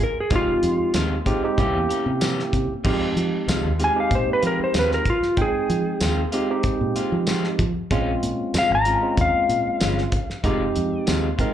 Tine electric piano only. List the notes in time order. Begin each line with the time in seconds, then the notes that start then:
0.32 G#3 C4 D#4 G4
1.26 G#3 C4 D#4 G4
1.44 G#3 C4 D#4 G4
1.58 A#3 C#4 E4 G4
2.85 G#3 C4 D#4 G4
3.79 G#3 C4 D#4 G4
3.95 G#3 C4 D#4 G4
5.37 G#3 C4 D#4 G5
6.33 G#3 C4 D#4 G4
6.50 G#3 C4 D#4 G4
7.91 G#3 C4 C#4 F4
8.86 G#3 C4 C#4 F4
9.02 G#3 C4 C#4 F4
10.44 G#3 C4 D#4 G4
11.40 G#3 C4 D#4 A#4